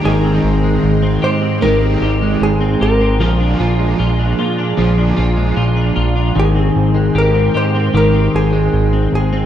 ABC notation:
X:1
M:4/4
L:1/16
Q:1/4=76
K:Ablyd
V:1 name="Analog synth pad"
[A,gbc']16 | [Afbd']16 | [A,gc']16 |]
V:2 name="Hollow-body jazz guitar"
A6 c2 B4 A2 B2- | B12 z4 | A4 B2 c2 B2 A4 A2 |]
V:3 name="Clean electric guitar"
E, C2 A,2 C G C [E,G] C G A,2 C G C | [F,F] D F A, F D F D [F,F] D F A, F D F D | E, C2 A, G C G C [E,G] C2 A,2 C2 C |]
V:4 name="Overdriven electric guitar"
[A,CE]8 [A,CEG]2 [CE]6 | [B,,D,F,B,DA]2 [F,B,DA]6 [B,,D,F,B,DA]2 [F,B,DA]6 | z16 |]
V:5 name="Analog synth bass" clef=bass
A,,,2 A,,,2 A,,,2 A,,2 A,,,2 A,,,2 A,,,2 A,,,2 | B,,,2 B,,,2 B,,,2 B,,2 B,,,2 B,,,2 B,,,2 B,,,2 | A,,,2 A,,,2 A,,,2 A,,2 A,,,2 A,,,2 A,,,2 A,,,2 |]